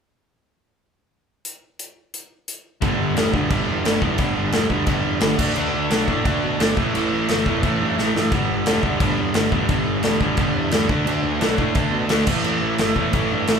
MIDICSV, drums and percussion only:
0, 0, Header, 1, 2, 480
1, 0, Start_track
1, 0, Tempo, 343840
1, 2014, Time_signature, 4, 2, 24, 8
1, 18980, End_track
2, 0, Start_track
2, 0, Title_t, "Drums"
2, 2025, Note_on_c, 9, 42, 59
2, 2164, Note_off_c, 9, 42, 0
2, 2504, Note_on_c, 9, 42, 59
2, 2644, Note_off_c, 9, 42, 0
2, 2987, Note_on_c, 9, 42, 59
2, 3126, Note_off_c, 9, 42, 0
2, 3463, Note_on_c, 9, 42, 63
2, 3602, Note_off_c, 9, 42, 0
2, 3935, Note_on_c, 9, 49, 60
2, 3939, Note_on_c, 9, 36, 116
2, 4074, Note_off_c, 9, 49, 0
2, 4079, Note_off_c, 9, 36, 0
2, 4420, Note_on_c, 9, 49, 57
2, 4435, Note_on_c, 9, 38, 99
2, 4559, Note_off_c, 9, 49, 0
2, 4575, Note_off_c, 9, 38, 0
2, 4656, Note_on_c, 9, 36, 84
2, 4796, Note_off_c, 9, 36, 0
2, 4892, Note_on_c, 9, 49, 70
2, 4895, Note_on_c, 9, 36, 107
2, 5032, Note_off_c, 9, 49, 0
2, 5034, Note_off_c, 9, 36, 0
2, 5377, Note_on_c, 9, 49, 61
2, 5392, Note_on_c, 9, 38, 111
2, 5516, Note_off_c, 9, 49, 0
2, 5532, Note_off_c, 9, 38, 0
2, 5610, Note_on_c, 9, 36, 87
2, 5750, Note_off_c, 9, 36, 0
2, 5835, Note_on_c, 9, 49, 55
2, 5845, Note_on_c, 9, 36, 111
2, 5975, Note_off_c, 9, 49, 0
2, 5985, Note_off_c, 9, 36, 0
2, 6316, Note_on_c, 9, 49, 57
2, 6332, Note_on_c, 9, 38, 108
2, 6456, Note_off_c, 9, 49, 0
2, 6471, Note_off_c, 9, 38, 0
2, 6562, Note_on_c, 9, 36, 74
2, 6701, Note_off_c, 9, 36, 0
2, 6792, Note_on_c, 9, 49, 64
2, 6799, Note_on_c, 9, 36, 126
2, 6931, Note_off_c, 9, 49, 0
2, 6939, Note_off_c, 9, 36, 0
2, 7267, Note_on_c, 9, 49, 55
2, 7282, Note_on_c, 9, 38, 120
2, 7406, Note_off_c, 9, 49, 0
2, 7422, Note_off_c, 9, 38, 0
2, 7522, Note_on_c, 9, 36, 106
2, 7523, Note_on_c, 9, 49, 99
2, 7662, Note_off_c, 9, 36, 0
2, 7662, Note_off_c, 9, 49, 0
2, 7758, Note_on_c, 9, 49, 62
2, 7898, Note_off_c, 9, 49, 0
2, 8244, Note_on_c, 9, 49, 60
2, 8259, Note_on_c, 9, 38, 107
2, 8383, Note_off_c, 9, 49, 0
2, 8399, Note_off_c, 9, 38, 0
2, 8486, Note_on_c, 9, 36, 77
2, 8626, Note_off_c, 9, 36, 0
2, 8731, Note_on_c, 9, 36, 117
2, 8731, Note_on_c, 9, 49, 63
2, 8870, Note_off_c, 9, 36, 0
2, 8871, Note_off_c, 9, 49, 0
2, 9215, Note_on_c, 9, 49, 70
2, 9230, Note_on_c, 9, 38, 114
2, 9354, Note_off_c, 9, 49, 0
2, 9370, Note_off_c, 9, 38, 0
2, 9452, Note_on_c, 9, 36, 106
2, 9592, Note_off_c, 9, 36, 0
2, 9701, Note_on_c, 9, 49, 65
2, 9841, Note_off_c, 9, 49, 0
2, 10170, Note_on_c, 9, 49, 56
2, 10186, Note_on_c, 9, 38, 109
2, 10310, Note_off_c, 9, 49, 0
2, 10325, Note_off_c, 9, 38, 0
2, 10415, Note_on_c, 9, 36, 79
2, 10554, Note_off_c, 9, 36, 0
2, 10654, Note_on_c, 9, 36, 107
2, 10657, Note_on_c, 9, 49, 59
2, 10793, Note_off_c, 9, 36, 0
2, 10796, Note_off_c, 9, 49, 0
2, 11151, Note_on_c, 9, 38, 66
2, 11291, Note_off_c, 9, 38, 0
2, 11398, Note_on_c, 9, 38, 97
2, 11538, Note_off_c, 9, 38, 0
2, 11613, Note_on_c, 9, 36, 120
2, 11613, Note_on_c, 9, 49, 59
2, 11752, Note_off_c, 9, 36, 0
2, 11753, Note_off_c, 9, 49, 0
2, 12087, Note_on_c, 9, 49, 58
2, 12102, Note_on_c, 9, 38, 111
2, 12227, Note_off_c, 9, 49, 0
2, 12242, Note_off_c, 9, 38, 0
2, 12328, Note_on_c, 9, 36, 81
2, 12467, Note_off_c, 9, 36, 0
2, 12569, Note_on_c, 9, 36, 114
2, 12570, Note_on_c, 9, 49, 61
2, 12708, Note_off_c, 9, 36, 0
2, 12709, Note_off_c, 9, 49, 0
2, 13040, Note_on_c, 9, 49, 57
2, 13055, Note_on_c, 9, 38, 115
2, 13180, Note_off_c, 9, 49, 0
2, 13195, Note_off_c, 9, 38, 0
2, 13290, Note_on_c, 9, 36, 92
2, 13430, Note_off_c, 9, 36, 0
2, 13523, Note_on_c, 9, 49, 62
2, 13529, Note_on_c, 9, 36, 111
2, 13663, Note_off_c, 9, 49, 0
2, 13668, Note_off_c, 9, 36, 0
2, 13998, Note_on_c, 9, 49, 53
2, 14014, Note_on_c, 9, 38, 96
2, 14138, Note_off_c, 9, 49, 0
2, 14153, Note_off_c, 9, 38, 0
2, 14248, Note_on_c, 9, 36, 90
2, 14388, Note_off_c, 9, 36, 0
2, 14475, Note_on_c, 9, 49, 62
2, 14486, Note_on_c, 9, 36, 115
2, 14615, Note_off_c, 9, 49, 0
2, 14626, Note_off_c, 9, 36, 0
2, 14957, Note_on_c, 9, 49, 67
2, 14973, Note_on_c, 9, 38, 122
2, 15097, Note_off_c, 9, 49, 0
2, 15112, Note_off_c, 9, 38, 0
2, 15208, Note_on_c, 9, 36, 107
2, 15347, Note_off_c, 9, 36, 0
2, 15454, Note_on_c, 9, 49, 61
2, 15594, Note_off_c, 9, 49, 0
2, 15928, Note_on_c, 9, 49, 56
2, 15943, Note_on_c, 9, 38, 100
2, 16067, Note_off_c, 9, 49, 0
2, 16083, Note_off_c, 9, 38, 0
2, 16170, Note_on_c, 9, 36, 89
2, 16309, Note_off_c, 9, 36, 0
2, 16401, Note_on_c, 9, 49, 59
2, 16410, Note_on_c, 9, 36, 123
2, 16540, Note_off_c, 9, 49, 0
2, 16550, Note_off_c, 9, 36, 0
2, 16879, Note_on_c, 9, 49, 66
2, 16895, Note_on_c, 9, 38, 107
2, 17019, Note_off_c, 9, 49, 0
2, 17034, Note_off_c, 9, 38, 0
2, 17125, Note_on_c, 9, 49, 104
2, 17132, Note_on_c, 9, 36, 109
2, 17265, Note_off_c, 9, 49, 0
2, 17272, Note_off_c, 9, 36, 0
2, 17371, Note_on_c, 9, 49, 65
2, 17511, Note_off_c, 9, 49, 0
2, 17845, Note_on_c, 9, 49, 62
2, 17861, Note_on_c, 9, 38, 107
2, 17985, Note_off_c, 9, 49, 0
2, 18000, Note_off_c, 9, 38, 0
2, 18093, Note_on_c, 9, 36, 74
2, 18232, Note_off_c, 9, 36, 0
2, 18330, Note_on_c, 9, 49, 67
2, 18338, Note_on_c, 9, 36, 111
2, 18470, Note_off_c, 9, 49, 0
2, 18477, Note_off_c, 9, 36, 0
2, 18811, Note_on_c, 9, 49, 60
2, 18826, Note_on_c, 9, 38, 115
2, 18950, Note_off_c, 9, 49, 0
2, 18966, Note_off_c, 9, 38, 0
2, 18980, End_track
0, 0, End_of_file